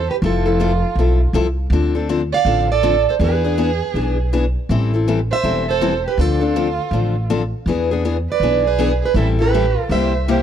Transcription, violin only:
0.09 G4
0.23 F4
2.33 D5
2.70 A4
3.08 A4
3.22 G#4
5.31 C5
5.68 A4
6.06 G4
6.21 F4
8.30 B4
8.66 G#4
9.02 G#4
9.16 E4
9.39 G4
9.90 C5
10.28 G4

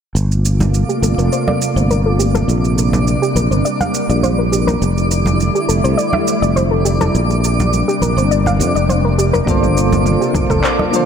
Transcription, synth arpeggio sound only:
0.89 G4
1.03 A4
1.18 A#4
1.32 C5
1.48 D5
1.77 C5
1.91 A#4
2.06 A4
2.19 G4
2.35 A4
3.22 G4
3.36 A#4
3.51 C5
3.65 D5
3.81 F5
4.10 D5
4.23 C5
4.38 A#4
4.52 G4
4.67 A#4
5.55 G4
5.68 A4
5.84 C5
5.97 D5
6.13 E5
6.42 D5
6.56 C5
6.71 A4
6.85 G4
7.01 A4
7.88 G4
8.02 A#4
8.17 C5
8.31 D5
8.47 F5
8.75 D5
8.89 C5
9.05 A#4
9.18 G4
9.33 A#4
10.21 G4
10.35 A4
10.50 A4
10.64 C5
10.79 D5

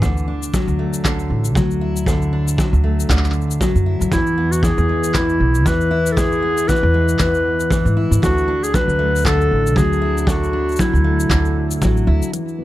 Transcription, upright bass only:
0.02 D2
0.67 D2
1.30 A1
1.55 D2
2.73 D2
3.09 D2
3.75 F#2
4.01 F#2
4.12 E2
4.78 E2
5.40 B1
5.66 E2
6.83 E2
7.20 E2
7.85 G#2
8.11 G#2
8.23 D2
8.88 D2
9.51 A1
9.76 D2
10.93 D2
11.30 D2
11.82 A1
12.07 D2

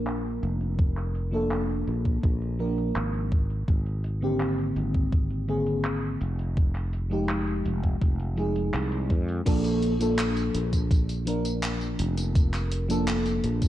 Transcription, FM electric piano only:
Already playing: F3 A#3 D4 A#4
1.31 F3 A#3 D4 A4
2.59 F3 A#3 D4 A#4
4.21 D3 A#3 C4 G4
5.48 D3 A#3 C4 G#4
7.10 F3 G#3 D#4 G4
8.36 F3 G#3 D#4 G#4
9.45 F3 A#3 D4 A4
9.99 F3 A#3 D4 A4
11.25 F3 A#3 D4 A#4
12.88 F3 A#3 D4 A4

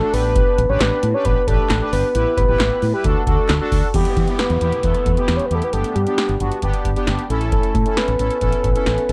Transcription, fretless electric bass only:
0.13 A1
0.58 A1
0.69 A1
0.80 A1
1.03 A2
1.25 A1
1.48 A1
1.70 A1
1.93 G1
2.15 A1
2.37 A1
2.49 A1
2.60 A1
2.82 A2
3.05 D2
3.27 D2
3.49 D2
3.72 D2
3.94 E2
4.16 E3
4.50 E2
4.61 E2
4.84 E2
5.06 E2
5.28 E2
5.51 E2
5.73 G1
5.96 G2
6.29 G1
6.40 G1
6.63 G1
6.85 G1
7.07 G1
7.30 A1
7.75 A2
8.08 A1
8.19 A1
8.42 A1
8.64 A1
8.87 A1
9.09 A1

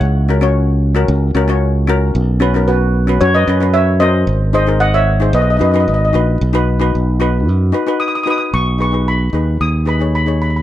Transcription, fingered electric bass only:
0.01 C#2
1.08 C#2
1.34 C#2
2.15 B1
3.21 F#2
3.48 F#2
4.27 G#1
5.33 B1
5.61 F#2
5.88 G#1
6.14 A#1
6.41 B1
6.95 B1
7.48 F#2
8.53 B1
9.33 D#2
9.61 D#2

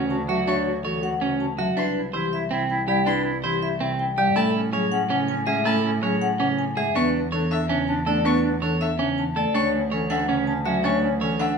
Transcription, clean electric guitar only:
Already playing: C#4
0.29 F#4
0.48 D4
0.85 C#5
1.21 C#4
1.58 F#4
1.77 D4
2.13 C5
2.51 C4
2.88 G4
3.06 D4
3.44 C5
3.80 C4
4.18 G4
4.36 E4
4.73 C#5
5.10 C#4
5.47 G#4
5.65 E4
6.03 C#5
6.40 C#4
6.77 G#4
6.95 D4
7.32 C#5
7.69 C#4
8.07 A4
8.25 D4
8.62 C#5
8.99 C#4
9.36 A4
9.54 D4
9.92 C#5
10.10 D4
10.29 C#4
10.66 F#4
10.84 D4
11.21 C#5
11.40 D4

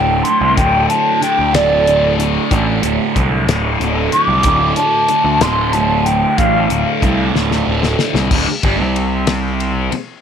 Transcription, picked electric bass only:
Already playing: D1
0.41 C2
0.57 D1
1.39 D2
1.54 D1
2.51 A1
2.83 D1
3.16 C2
3.47 D1
3.80 D1
4.28 C2
4.44 D1
5.24 D2
5.41 D1
6.39 A1
6.70 D1
7.02 C2
7.34 D1
7.67 D1
8.14 C2
8.31 D1
8.49 muted picked electric bass stroke
8.64 G1
8.80 C2
9.92 muted picked electric bass stroke

